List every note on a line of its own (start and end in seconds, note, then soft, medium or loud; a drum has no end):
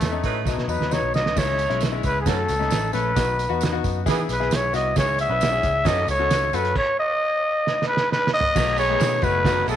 0.00 0.20 E2 medium
0.00 0.65 A3 medium
0.00 snare loud
0.00 closed hi-hat medium
0.00 tambourine medium
0.11 0.38 A3 medium
0.11 0.38 C#4 medium
0.11 0.38 D#4 medium
0.23 0.43 A2 medium
0.23 0.56 F#3 medium
0.23 0.56 D#4 medium
0.23 0.56 B4 loud
0.23 kick medium
0.23 closed hi-hat medium
0.23 tambourine medium
0.45 0.55 B1 medium
0.45 0.64 F#3 medium
0.45 0.64 B3 medium
0.45 0.64 D#4 medium
0.45 kick medium
0.45 snare medium
0.45 tambourine medium
0.57 0.67 B2 medium
0.57 snare soft
0.68 0.78 E2 medium
0.68 0.86 F#3 medium
0.68 0.86 B3 medium
0.68 0.86 D#4 medium
0.68 0.94 B4 medium
0.68 tambourine medium
0.80 0.99 D#2 medium
0.80 snare medium
0.91 1.26 F#3 medium
0.91 1.26 B3 medium
0.91 1.26 D#4 medium
0.91 1.15 C#5 medium
0.91 snare medium
0.91 tambourine medium
1.02 1.12 B1 medium
1.14 1.33 C2 medium
1.14 1.40 D#5 loud
1.14 snare medium
1.14 tambourine medium
1.26 snare medium
1.36 1.66 C#2 loud
1.36 1.62 G#3 medium
1.36 1.62 C#4 medium
1.36 1.63 E4 medium
1.36 1.82 C#5 medium
1.36 kick loud
1.36 snare loud
1.36 crash medium
1.36 tambourine medium
1.59 closed hi-hat medium
1.59 tambourine soft
1.70 2.00 B1 medium
1.70 1.87 G#3 medium
1.70 1.87 C#4 medium
1.70 1.87 E4 medium
1.70 closed hi-hat soft
1.81 snare loud
1.81 closed hi-hat medium
1.81 tambourine medium
1.92 2.18 G#3 medium
1.92 2.19 C#4 medium
1.92 2.19 E4 medium
2.03 2.24 C#2 medium
2.03 2.19 B4 loud
2.03 kick medium
2.03 closed hi-hat medium
2.03 tambourine medium
2.21 2.29 G#4 medium
2.26 2.46 F#2 medium
2.26 2.41 F#3 medium
2.26 2.52 A3 medium
2.26 2.52 C#4 medium
2.26 2.41 C#4 medium
2.26 2.53 F#4 medium
2.26 2.40 A4 loud
2.26 2.93 A4 loud
2.26 kick medium
2.26 snare loud
2.26 closed hi-hat medium
2.26 tambourine medium
2.49 2.69 C#2 medium
2.49 closed hi-hat medium
2.49 tambourine medium
2.59 2.86 A3 medium
2.59 2.86 C#4 medium
2.59 2.86 D#4 medium
2.59 snare soft
2.71 2.91 A1 medium
2.71 snare loud
2.71 closed hi-hat medium
2.71 tambourine medium
2.93 3.14 A#1 medium
2.93 3.11 A3 medium
2.93 3.11 C#4 medium
2.93 3.11 A4 medium
2.93 3.80 B4 medium
2.93 closed hi-hat medium
2.93 tambourine medium
3.15 3.46 B1 medium
3.15 3.42 B3 medium
3.15 3.42 D#4 medium
3.15 3.42 F#4 medium
3.15 kick loud
3.15 snare loud
3.15 closed hi-hat medium
3.15 tambourine medium
3.39 closed hi-hat medium
3.39 tambourine medium
3.49 3.80 E2 medium
3.49 3.67 B3 medium
3.49 3.67 D#4 medium
3.49 3.67 F#4 loud
3.61 snare loud
3.61 closed hi-hat medium
3.61 tambourine medium
3.72 3.98 B3 medium
3.72 3.99 D#4 medium
3.72 3.99 F#4 loud
3.84 4.04 F#2 medium
3.84 kick medium
3.84 closed hi-hat medium
3.84 tambourine medium
4.06 4.26 E3 medium
4.06 4.21 E3 medium
4.06 4.32 B3 medium
4.06 4.21 B3 loud
4.06 4.32 E4 medium
4.06 4.32 G#4 medium
4.06 4.21 G#4 loud
4.06 kick loud
4.06 snare loud
4.06 closed hi-hat medium
4.06 tambourine medium
4.29 4.48 B1 medium
4.29 4.56 B4 medium
4.29 closed hi-hat medium
4.29 tambourine medium
4.40 4.66 B3 medium
4.40 4.66 E4 medium
4.40 4.66 G#4 medium
4.40 snare soft
4.51 4.71 B1 medium
4.51 4.75 C#5 loud
4.51 snare loud
4.51 closed hi-hat medium
4.51 tambourine medium
4.73 4.93 C2 medium
4.73 4.91 B3 medium
4.73 4.91 E4 medium
4.73 4.91 F#4 medium
4.73 4.96 D#5 loud
4.73 closed hi-hat medium
4.73 tambourine medium
4.96 5.26 C#2 loud
4.96 5.22 C#4 medium
4.96 5.22 E4 medium
4.96 5.23 G#4 medium
4.96 5.18 C#5 loud
4.96 kick loud
4.96 snare loud
4.96 closed hi-hat medium
4.96 tambourine loud
5.19 5.88 E5 loud
5.19 closed hi-hat medium
5.19 tambourine soft
5.29 5.59 B1 medium
5.29 5.47 C#4 medium
5.29 5.47 E4 medium
5.29 5.47 B4 medium
5.41 snare loud
5.41 closed hi-hat medium
5.41 tambourine loud
5.51 5.78 C#4 medium
5.51 5.78 E4 medium
5.51 5.78 G#4 medium
5.63 5.83 C#2 medium
5.63 kick medium
5.63 closed hi-hat medium
5.63 tambourine medium
5.84 6.05 F#2 loud
5.84 6.14 F#3 loud
5.84 6.14 C#4 medium
5.84 6.12 C#4 medium
5.84 6.12 F#4 medium
5.84 6.14 A4 loud
5.84 6.12 A4 medium
5.84 6.09 D#5 loud
5.84 kick medium
5.84 snare loud
5.84 closed hi-hat medium
5.84 tambourine medium
6.08 6.28 C#2 medium
6.08 6.57 C#5 loud
6.08 closed hi-hat medium
6.08 tambourine medium
6.19 6.46 C#4 medium
6.19 6.46 F#4 medium
6.19 6.46 A4 medium
6.30 6.50 C#2 medium
6.30 snare loud
6.30 closed hi-hat loud
6.30 tambourine medium
6.53 6.73 F#2 loud
6.53 6.71 C#4 medium
6.53 6.71 F#4 medium
6.53 6.71 A4 medium
6.53 6.77 B4 medium
6.53 closed hi-hat medium
6.53 tambourine medium
6.65 closed hi-hat medium
6.76 6.98 C#5 loud
6.76 kick loud
6.76 crash medium
6.99 7.85 D#5 loud
7.67 snare medium
7.82 snare medium
7.88 8.09 B4 loud
7.97 snare medium
8.12 8.32 B4 loud
8.12 snare medium
8.27 snare loud
8.34 8.75 D#5 loud
8.40 floor tom medium
8.55 8.95 B1 loud
8.55 8.82 A3 medium
8.55 8.82 B3 medium
8.55 8.82 D#4 medium
8.55 8.82 F#4 medium
8.55 kick loud
8.55 snare loud
8.55 crash loud
8.55 tambourine loud
8.76 9.19 D#3 medium
8.76 9.20 B3 medium
8.76 9.20 G#4 loud
8.76 9.25 C#5 loud
8.76 ride medium
8.76 tambourine medium
8.88 9.16 A3 medium
8.88 9.16 B3 medium
8.88 9.16 D#4 medium
8.88 9.16 G#4 medium
8.88 ride soft
9.00 9.20 B2 medium
9.00 snare loud
9.00 ride medium
9.00 tambourine medium
9.22 9.62 F#1 medium
9.22 9.40 A3 medium
9.22 9.40 B3 medium
9.22 9.40 D#4 medium
9.22 9.40 F#4 medium
9.22 9.68 B4 loud
9.22 kick medium
9.22 ride medium
9.22 tambourine medium
9.44 9.62 D#3 loud
9.44 9.72 A3 medium
9.44 9.62 B3 loud
9.44 9.72 B3 medium
9.44 9.72 D#4 medium
9.44 9.63 F#4 loud
9.44 9.72 F#4 medium
9.44 kick loud
9.44 snare loud
9.44 ride medium
9.44 tambourine medium
9.66 9.76 B1 medium
9.66 9.76 G#3 loud
9.66 9.76 E4 loud
9.66 9.76 G#4 loud
9.66 9.76 A4 medium
9.66 ride medium
9.66 tambourine medium